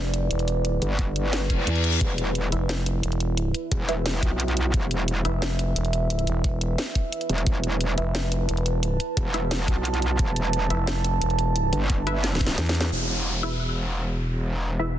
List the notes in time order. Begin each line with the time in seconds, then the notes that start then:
Already playing: F1 E4 B4 D5
0.14 closed hi-hat
0.31 E1, closed hi-hat
0.39 closed hi-hat
0.48 closed hi-hat
0.65 closed hi-hat
0.82 G1, closed hi-hat
0.99 kick, closed hi-hat
1.16 closed hi-hat
1.33 snare, closed hi-hat, reverse cymbal
1.41 F#1
1.50 kick, closed hi-hat
1.67 E2, closed hi-hat
1.76 closed hi-hat
1.84 closed hi-hat
1.93 closed hi-hat
2.01 E1 E5, kick, closed hi-hat
2.18 closed hi-hat
2.35 closed hi-hat
2.52 F1 E4 B4 E5, closed hi-hat
2.69 snare, closed hi-hat
2.86 closed hi-hat
3.03 E1, closed hi-hat
3.12 closed hi-hat
3.20 closed hi-hat
3.37 closed hi-hat
3.55 closed hi-hat
3.72 E1, kick, closed hi-hat
3.89 E4 B4 E5, closed hi-hat
4.06 snare, closed hi-hat
4.23 B1, kick, closed hi-hat
4.40 closed hi-hat
4.48 closed hi-hat
4.57 closed hi-hat
4.74 E1, kick, closed hi-hat
4.91 closed hi-hat
5.08 closed hi-hat
5.25 F1 E4 B4 E5, closed hi-hat
5.42 snare, closed hi-hat
5.59 closed hi-hat
5.76 E1, closed hi-hat
5.85 closed hi-hat
5.93 closed hi-hat
6.10 closed hi-hat
6.19 closed hi-hat
6.27 E1, closed hi-hat
6.44 kick, closed hi-hat
6.61 closed hi-hat
6.78 snare, closed hi-hat
6.95 kick, closed hi-hat
7.12 closed hi-hat
7.21 closed hi-hat
7.29 E1, closed hi-hat
7.38 closed hi-hat
7.47 E1 A5, kick, closed hi-hat
7.64 closed hi-hat
7.81 closed hi-hat
7.98 F1 E4 B4 E5, closed hi-hat
8.15 snare, closed hi-hat
8.32 closed hi-hat
8.49 E1, closed hi-hat
8.57 closed hi-hat
8.66 closed hi-hat
8.83 closed hi-hat
9.00 closed hi-hat
9.17 E1, kick, closed hi-hat
9.34 E4 B4 E5, closed hi-hat
9.51 snare, closed hi-hat
9.68 B1, kick, closed hi-hat
9.85 closed hi-hat
9.94 closed hi-hat
10.02 closed hi-hat
10.19 E1, kick, closed hi-hat
10.36 closed hi-hat
10.53 closed hi-hat
10.70 F1 E4 B4 E5, closed hi-hat
10.87 snare, closed hi-hat
11.04 closed hi-hat
11.22 E1, closed hi-hat
11.30 closed hi-hat
11.39 closed hi-hat
11.56 closed hi-hat
11.73 G1, closed hi-hat
11.90 kick, closed hi-hat
12.07 E4 B4 E5, closed hi-hat
12.24 snare, closed hi-hat
12.35 snare
12.41 kick, closed hi-hat
12.47 snare
12.58 E2, snare, closed hi-hat
12.66 snare, closed hi-hat
12.75 closed hi-hat
12.81 snare, closed hi-hat, zap
12.92 E1 E4 B4 E5, crash, downlifter
13.43 E4 B4 E5
14.79 E4 B4 E5